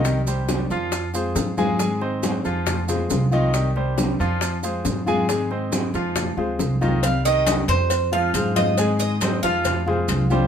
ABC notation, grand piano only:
X:1
M:4/4
L:1/8
Q:1/4=138
K:Fdor
V:1 name="Grand piano"
[E,Ee] [G,Gc]2 [F,Ff]2 [A,Ac]2 [A,Aa] | [A,Aa] [Cce]2 [F,Ff]2 [A,Ac]2 [E,Ee]- | [E,Ee] [G,Gc]2 [F,Ff]2 [A,Ac]2 [A,Aa] | [A,Aa] [Cce]2 [F,Ff]2 [A,Ac]2 [E,Ee] |
z [E,Ee]2 c2 [F,Ff] [A,Ac]2 | [A,Aa]2 [Cce] [F,Ff]2 [A,Ac]2 [G,Gc] |]